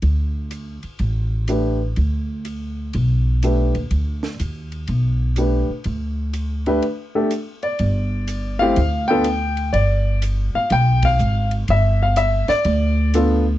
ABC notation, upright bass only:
X:1
M:4/4
L:1/8
Q:"Swing" 1/4=124
K:Gmix
V:1 name="Upright bass" clef=bass
D,,3 z A,,,4 | D,,4 B,,,3 _E,, | D,,2 _E,,2 B,,,3 z | D,,4 z4 |
G,,,4 D,,4 | G,,,3 z B,,,2 _A,,,2 | G,,,3 z D,,4 |]